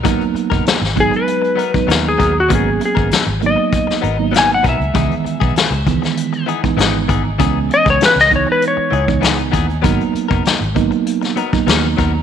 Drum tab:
HH |xxx-xxxxxxxxx-x-|x-x-x-x-x-x-xxxx|xxx-xxxxxxxxx-x-|x-x-x-x-x-x-xxxx|
SD |----oo------o---|----o----o--o---|----o--o----o---|----oo------o---|
BD |o--o--o----o--o-|o--o----o-----o-|o--o--o----o--o-|o--o--o----o--o-|

HH |xxx-xxxxxxxxx-x-|
SD |----o----o--o---|
BD |o--o--o----o--o-|